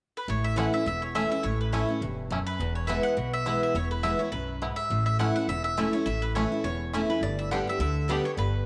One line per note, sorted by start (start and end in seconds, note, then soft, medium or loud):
0.17 0.29 B4 medium
0.28 0.66 A1 medium
0.28 0.84 A2 medium
0.28 0.44 C#5 medium
0.44 0.57 E5 medium
0.56 0.72 E3 medium
0.56 0.72 A3 medium
0.56 0.65 A3 medium
0.56 0.73 C#4 medium
0.56 0.65 C#4 medium
0.56 0.72 E4 medium
0.56 0.65 E4 medium
0.56 0.73 F#5 medium
0.73 0.86 C#4 soft
0.73 0.85 E4 medium
0.73 0.86 E5 medium
0.86 1.24 E1 medium
0.86 1.41 E2 medium
0.86 1.02 E5 medium
1.02 1.15 C#5 medium
1.15 1.30 E3 medium
1.15 1.22 A3 medium
1.15 1.31 A3 medium
1.15 1.31 C#4 medium
1.15 1.22 C#4 medium
1.15 1.23 E4 medium
1.15 1.30 E4 loud
1.15 1.30 E5 loud
1.31 1.44 C#4 soft
1.31 1.43 E4 medium
1.31 1.45 E5 loud
1.43 1.82 A1 medium
1.43 1.99 A2 medium
1.43 1.59 C#5 medium
1.61 1.72 B4 medium
1.72 1.88 E3 medium
1.72 1.80 A3 medium
1.72 1.88 A3 medium
1.72 1.80 C#4 medium
1.72 1.89 C#4 medium
1.72 1.87 E4 loud
1.72 1.80 E4 medium
1.72 2.15 C#5 medium
1.88 2.02 C#4 soft
1.88 2.01 E4 medium
2.01 2.39 E1 medium
2.01 2.29 G2 medium
2.30 2.58 F#2 medium
2.30 2.38 A3 medium
2.30 2.39 C#4 medium
2.30 2.39 E4 medium
2.47 2.73 B4 medium
2.60 2.97 E1 loud
2.60 3.15 E2 medium
2.75 2.89 C#5 medium
2.87 3.16 E3 medium
2.87 3.16 G#3 medium
2.87 3.16 B3 loud
2.87 2.96 B3 medium
2.87 3.17 E4 medium
2.87 2.92 E4 medium
2.87 3.03 E5 medium
3.03 3.33 F#5 loud
3.17 3.55 B1 medium
3.17 3.72 B2 medium
3.33 3.60 E5 loud
3.46 3.74 E3 medium
3.46 3.74 G#3 loud
3.46 3.53 B3 medium
3.46 3.74 B3 medium
3.46 3.49 E4 medium
3.46 3.74 E4 loud
3.63 3.76 E5 medium
3.74 4.13 E1 loud
3.74 4.30 E2 medium
3.74 3.90 C#5 loud
3.91 4.04 B4 medium
4.03 4.19 E3 medium
4.03 4.19 G#3 medium
4.03 4.11 B3 medium
4.03 4.19 B3 medium
4.03 4.06 E4 medium
4.03 4.18 E4 medium
4.03 4.20 E5 loud
4.19 4.33 B3 medium
4.19 4.32 E4 medium
4.19 4.31 C#5 medium
4.32 4.70 B1 medium
4.32 4.60 F#2 medium
4.32 4.74 B4 loud
4.62 4.89 G#2 medium
4.62 4.69 B3 medium
4.62 4.65 E4 medium
4.76 5.04 E5 loud
4.90 5.28 A1 medium
4.90 5.46 A2 medium
5.06 5.19 E5 medium
5.19 5.35 E3 medium
5.19 5.35 A3 medium
5.19 5.27 A3 medium
5.19 5.35 C#4 medium
5.19 5.27 C#4 medium
5.19 5.27 E4 medium
5.19 5.34 E4 medium
5.19 5.34 F#5 loud
5.36 5.49 C#4 soft
5.36 5.48 E4 medium
5.36 5.48 F#5 medium
5.48 5.86 E1 medium
5.48 6.04 E2 medium
5.48 5.63 E5 loud
5.64 5.91 E5 medium
5.77 5.93 E3 medium
5.77 5.93 A3 loud
5.77 5.85 A3 medium
5.77 5.93 C#4 medium
5.77 5.85 C#4 medium
5.77 5.92 E4 medium
5.77 5.85 E4 medium
5.93 6.07 C#4 soft
5.93 6.06 E4 medium
5.93 6.06 C#5 medium
6.06 6.44 A1 medium
6.06 6.62 A2 medium
6.06 6.23 E5 loud
6.22 6.35 B4 medium
6.35 6.51 E3 medium
6.35 6.43 A3 medium
6.35 6.51 A3 medium
6.35 6.51 C#4 medium
6.35 6.43 C#4 medium
6.35 6.43 E4 medium
6.35 6.51 E4 medium
6.35 6.62 C#5 medium
6.52 6.65 C#4 medium
6.52 6.64 E4 medium
6.64 7.02 E1 medium
6.64 7.20 E2 medium
6.64 7.09 C#5 loud
6.93 7.09 E3 medium
6.93 7.00 A3 medium
6.93 7.09 A3 medium
6.93 7.01 C#4 medium
6.93 7.09 C#4 loud
6.93 7.01 E4 medium
6.93 7.08 E4 loud
7.10 7.23 C#4 soft
7.10 7.22 E4 medium
7.10 7.22 B4 medium
7.21 7.59 G1 medium
7.21 7.78 G2 medium
7.21 7.39 D5 medium
7.39 7.51 E5 medium
7.51 7.66 D3 medium
7.51 7.67 G3 medium
7.51 7.58 B3 medium
7.51 7.67 B3 medium
7.51 7.59 D4 medium
7.51 7.59 G4 medium
7.51 7.66 G4 loud
7.51 7.66 F#5 loud
7.67 7.80 B3 medium
7.67 7.79 G4 medium
7.67 7.79 E5 medium
7.79 8.17 D2 medium
7.79 8.07 D3 medium
7.79 8.10 E5 medium
8.08 8.24 D3 medium
8.08 8.24 G3 medium
8.08 8.24 B3 loud
8.08 8.17 B3 medium
8.08 8.17 D4 medium
8.08 8.23 G4 medium
8.08 8.17 G4 medium
8.08 8.24 D5 medium
8.24 8.38 B3 soft
8.24 8.37 G4 medium
8.24 8.30 C#5 medium
8.37 8.66 G1 medium
8.37 8.66 G2 medium
8.37 8.66 B4 medium